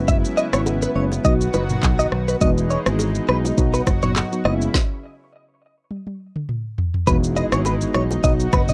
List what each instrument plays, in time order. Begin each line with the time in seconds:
Already playing: fingered electric bass F#1, analog synth pad C#3 F#3 B3 E4, tine electric piano G#3 B3 C#4 E4
0.08 clean electric guitar E5, kick, low conga, shaker
0.25 shaker
0.37 clean electric guitar D#5, shaker
0.53 fingered electric bass G#1, tine electric piano G#3 B3 C#4 E4, clean electric guitar C#5, cross-stick, low bongo, shaker
0.66 high bongo, shaker
0.82 clean electric guitar B4, shaker
0.95 fingered electric bass F#1, tine electric piano G#3 B3 C#4 E4, clean electric guitar C#5
1.12 high bongo, low bongo, shaker
1.24 fingered electric bass B1, analog synth pad D#3 F#3 F#4, tine electric piano F#3 B3 D#4 F#4, clean electric guitar D#5, kick, low conga, shaker
1.41 shaker
1.54 fingered electric bass F#1, clean electric guitar B4, low bongo, low conga, shaker
1.69 tine electric piano F#3 B3 D#4 F#4, mid tom, shaker
1.83 fingered electric bass B1, kick, clap, high bongo, shaker
1.99 clean electric guitar D#5, shaker
2.12 fingered electric bass B1, cross-stick
2.28 clean electric guitar B4, shaker
2.41 fingered electric bass E1, analog synth pad E3 G#3 D#4, tine electric piano G#3 B3 D#4 F#4, clean electric guitar D#5, kick, low conga, shaker
2.58 shaker
2.70 clean electric guitar C#5, shaker
2.86 fingered electric bass G#1, tine electric piano G#3 B3 D#4 F#4, cross-stick, low bongo, shaker
2.99 high bongo, shaker
3.15 shaker
3.28 fingered electric bass B1, tine electric piano G#3 B3 D#4 F#4, clean electric guitar B4, cross-stick
3.45 high bongo, low bongo, shaker
3.57 fingered electric bass B1, tine electric piano F#3 B3 D#4 F#4, analog synth pad F#3 F#4, kick, low conga, shaker
3.74 clean electric guitar B4, shaker
3.87 fingered electric bass F#1, kick, cross-stick, low bongo, low conga, shaker
4.02 tine electric piano F#3 B3 D#4 F#4, clean electric guitar C#5, mid tom, shaker
4.16 clap, high bongo, shaker
4.32 tine electric piano F#3 B3 D#4 F#4, shaker
4.45 fingered electric bass F#1, analog synth pad C#3 E4, tine electric piano G#3 B3 C#4 E4, clean electric guitar D#5, cross-stick
4.61 shaker
4.74 kick, snare
5.91 high tom
6.07 high tom
6.36 mid tom
6.49 mid tom
6.78 floor tom
6.94 floor tom
7.07 fingered electric bass E1, analog synth pad E3 G#3 B3 D#4, tine electric piano G#3 B3 D#4 F#4, clean electric guitar B4, kick, impact, low conga, shaker
7.24 shaker
7.36 clean electric guitar D#5, shaker
7.52 fingered electric bass G#1, tine electric piano G#3 B3 D#4 F#4, clean electric guitar C#5, cross-stick, shaker
7.65 clean electric guitar B4, high bongo, shaker
7.81 shaker
7.94 fingered electric bass B1, tine electric piano G#3 B3 D#4 F#4, clean electric guitar C#5, cross-stick, low bongo
8.11 high bongo, low bongo, shaker
8.23 fingered electric bass B1, tine electric piano F#3 B3 D#4 F#4, analog synth pad F#3 F#4, clean electric guitar D#5, kick, low conga, shaker
8.40 shaker
8.53 fingered electric bass F#1, clean electric guitar B4, kick, cross-stick, low bongo, low conga, shaker
8.68 tine electric piano F#3 B3 D#4 F#4, clean electric guitar D#5, mid tom, shaker